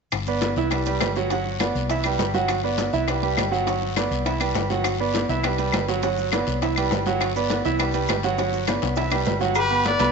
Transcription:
0.12 G1, high bongo, high conga, high timbale, long guiro, claves, maracas
0.27 B3 B4 D5, high bongo, high conga, maracas
0.41 high bongo, high conga, high timbale, low timbale, short guiro, maracas
0.56 C2 E3 E4 E5, high bongo, high conga, short guiro, maracas
0.70 G3 G4 B4, high bongo, high conga, high timbale, long guiro, claves, maracas
0.86 G3 G4 B4, high bongo, high conga, high timbale, maracas
1.00 G1, high bongo, low bongo, high conga, high timbale, low timbale, short guiro, claves, maracas
1.16 F#3 F#4 F#5, short guiro, maracas
1.30 F#3 F#4 F#5, high bongo, high conga, high timbale, long guiro, maracas
1.46 high bongo, high conga
1.60 B3 B4 D5, high bongo, high conga, high timbale, low timbale, short guiro, claves, maracas
1.75 C2, high conga, short guiro, maracas
1.90 E3 E4 E5, high bongo, high conga, high timbale, long guiro, maracas
2.04 G3 G4 B4, high bongo, high conga, high timbale, claves, maracas
2.19 G1, high bongo, low bongo, high conga, low timbale, short guiro, maracas
2.34 F#3 F#4 F#5, high bongo, high conga, short guiro, maracas
2.48 high bongo, high conga, high timbale, long guiro, claves, maracas
2.64 B3 B4 D5, high bongo, high conga
2.78 high bongo, high conga, high timbale, low timbale, short guiro, maracas
2.93 C2 E3 E4 E5, high bongo, high conga, short guiro, maracas
3.08 G3 G4 B4, high bongo, high conga, high timbale, long guiro, claves, maracas
3.23 G3 G4 B4, high bongo, high conga, high timbale
3.37 G1, high bongo, low bongo, high conga, high timbale, low timbale, short guiro, claves, maracas
3.52 F#3 F#4 F#5, short guiro, maracas
3.67 F#3 F#4 F#5, high bongo, high conga, high timbale, long guiro, maracas
3.82 high bongo, high conga
3.96 B3 B4 D5, high bongo, high conga, high timbale, low timbale, short guiro, claves, maracas
4.11 C2, high conga, short guiro, maracas
4.25 E3 E4 E5, high bongo, high conga, high timbale, long guiro, maracas
4.40 G3 G4 B4, high bongo, high conga, high timbale, claves, maracas
4.55 G1, high bongo, low bongo, high conga, low timbale, short guiro, maracas
4.70 F#3 F#4 F#5, high bongo, high conga, short guiro, maracas
4.84 high bongo, high conga, high timbale, long guiro, claves, maracas
5.00 B3 B4 D5, high bongo, high conga
5.14 high bongo, high conga, high timbale, low timbale, short guiro, maracas
5.29 C2 E3 E4 E5, high bongo, high conga, short guiro, maracas
5.43 G3 G4 B4, high bongo, high conga, high timbale, long guiro, claves, maracas
5.58 G3 G4 B4, high bongo, high conga, high timbale, maracas
5.72 G1, high bongo, low bongo, high conga, high timbale, low timbale, short guiro, claves, maracas
5.88 F#3 F#4 F#5, short guiro, maracas
6.02 F#3 F#4 F#5, high bongo, high conga, high timbale, long guiro, maracas
6.18 high bongo, high conga, maracas
6.32 B3 B4 D5, high bongo, high conga, high timbale, low timbale, short guiro, claves, maracas
6.47 C2, high conga, short guiro, maracas
6.62 E3 E4 E5, high bongo, high conga, high timbale, long guiro, maracas
6.76 G3 G4 B4, high bongo, high conga, high timbale, claves, maracas
6.91 G1, high bongo, low bongo, high conga, low timbale, short guiro, maracas
7.06 F#3 F#4 F#5, high bongo, high conga, short guiro, maracas
7.20 high bongo, high conga, high timbale, long guiro, claves, maracas
7.36 B3 B4 D5, high bongo, high conga, maracas
7.50 high bongo, high conga, high timbale, low timbale, short guiro, maracas
7.65 C2 E3 E4 E5, high bongo, high conga, short guiro, maracas
7.79 G3 G4 B4, high bongo, high conga, high timbale, long guiro, claves, maracas
7.94 G3 G4 B4, high bongo, high conga, high timbale, maracas
8.08 G1, high bongo, low bongo, high conga, high timbale, low timbale, short guiro, claves, maracas
8.23 F#3 F#4 F#5, short guiro, maracas
8.38 F#3 F#4 F#5, high bongo, high conga, high timbale, long guiro, maracas
8.52 high bongo, high conga, maracas
8.67 B3 B4 D5, high bongo, high conga, high timbale, low timbale, short guiro, claves, maracas
8.82 C2, high bongo, high conga, short guiro, maracas
8.96 E3 E4 E5, high bongo, high conga, high timbale, long guiro, maracas
9.11 G3 G4 B4, high bongo, high conga, high timbale, claves, maracas
9.25 G1, low bongo, high conga, low timbale, short guiro, maracas
9.40 F#3 F#4 F#5, low bongo, high conga, short guiro, maracas
9.55 G4 B4, cowbell, high conga, low agogo, long guiro, claves, maracas
9.69 B3 B4 B5, high conga, maracas
9.84 B4 D5, cowbell, high conga, low agogo, short guiro, maracas
9.99 C2 B3 B4 B5, cowbell, high conga, low agogo, short guiro, maracas

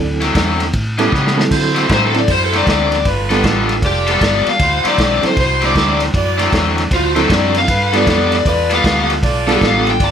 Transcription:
Already playing: D2 F#3 C4 D4 E4 A4
0.21 D3 F#3 C4 E4, snare, ride
0.34 E2 D3 F#3 C4 E4, kick, snare, ride
0.60 snare, ride
0.73 A2, kick, ride
0.98 A2 G3 B3 C#4 E4 A4, snare, ride
1.12 A2 C#3 G3 B3 C#4, kick, snare
1.27 snare
1.37 F#3 C4 D4 E4 A4, snare
1.50 D3 E4 F#4 C5, kick, snare, crash
1.75 D3 F#3 C4 E4, snare, ride
1.89 A2 D3 F#3 C4 E4, kick, snare, ride
1.94 C5
2.06 A4
2.14 F#3 C4 D4 E4 A4, snare, ride
2.19 D5
2.28 F#2 E4 F#4 C5, kick, snare, ride
2.32 C5
2.45 A4
2.53 D3 F#3 C4 E4, snare, ride
2.57 D5
2.66 D2 D3 F#3 C4 E4, kick, snare, ride
2.71 D5
2.92 snare, ride
3.05 G1 F4 A4 B4, kick, snare, ride
3.29 G3 B3 D4 F4 A4, snare, ride
3.43 A1 G3 B3 F4 A4, kick, snare, ride
3.69 snare, ride
3.81 F1 F4 A4 D5, kick, snare, ride
3.86 G4
4.07 G3 B3 F4 A4, snare, ride
4.21 G1 G3 B3 F4 A4 D5, kick, snare, ride
4.46 F5, muted fingered electric bass stroke, snare, ride
4.59 D2 E4 F#4 C5, kick, snare, ride
4.84 D3 F#3 C4 E4 D5, muted fingered electric bass stroke, snare, ride
4.98 B1 D3 F#3 C4 E4, kick, snare, ride
5.02 D5
5.23 F#3 C4 D4 E4 A4 C5, muted fingered electric bass stroke, snare, ride
5.36 C2 E4 F#4 C5, kick, snare, ride
5.61 D3 F#3 C4 E4, snare, ride
5.65 D5
5.74 D2 D3 F#3 C4 E4, kick, snare, ride
6.00 snare, ride
6.13 F#2 E4 F#4 D5, kick, snare, ride
6.38 D3 F#3 C4 E4, snare, ride
6.51 E2 D3 F#3 C4 E4, kick, snare, ride
6.78 snare, ride
6.90 D2 E4 F4 F#4 C5, kick, snare, ride
7.15 D3 F#3 C4 D4 E4 A4, snare, ride
7.29 F#2 D3 F#3 C4 E4, kick, snare, ride
7.33 D5
7.55 F5, snare, ride
7.67 G2 F4 A4 B4, kick, snare, ride
7.92 G3 B3 D4 F4 A4, snare, ride
7.97 D5
8.06 F2 G3 B3 F4 A4 D5, kick, snare, ride
8.32 D5, snare, ride
8.45 E2 F4 A4 B4 D5, kick, snare, ride
8.70 G3 B3 F4 A4, snare, ride
8.75 F5
8.83 D2 G3 B3 F4 A4, kick, snare, ride
9.10 snare, ride
9.22 B1 F4 A4 D5, kick, snare, ride
9.47 G3 B3 D4 F4 A4, snare, ride
9.61 A1 G3 B3 F4 A4 F5, kick, snare, ride
9.87 G5, snare, ride
9.99 G1 F4 A4 D5, kick, snare, ride
10.04 A5

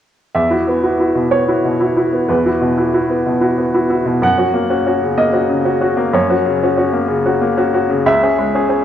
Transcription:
0.34 E2 E5
0.50 E4 F#4
0.67 B3
0.84 E4 F#4
1.00 E4 F#4
1.15 B2
1.31 B3 C#5
1.48 E4 F#4
1.65 B2
1.80 E4 F#4
1.97 E4 F#4
2.13 B3
2.28 E2 B4
2.46 E4 F#4
2.61 B2
2.77 E4 F#4
2.94 E4 F#4
3.09 B3
3.26 B2
3.41 E4 F#4
3.58 B3
3.74 E4 F#4
3.90 E4 F#4
4.06 B2
4.22 F#2 F#5
4.38 C#4 F#4
4.54 A#3
4.70 C#4 F#4
4.86 C#4 F#4
5.02 C#3
5.18 A#3 D#5
5.33 C#4 F#4
5.49 C#3
5.65 C#4 F#4
5.81 C#4 F#4
5.97 A#3
6.13 F#2 C#5
6.30 C#4 F#4
6.45 C#3
6.63 C#4 F#4
6.77 C#4 F#4
6.93 A#3
7.08 C#3
7.25 C#4 F#4
7.41 A#3
7.57 C#4 F#4
7.74 C#4 F#4
7.89 C#3
8.06 C#2 E5
8.23 C#4 G#4
8.38 G#3
8.54 C#4 G#4
8.69 C#4 G#4

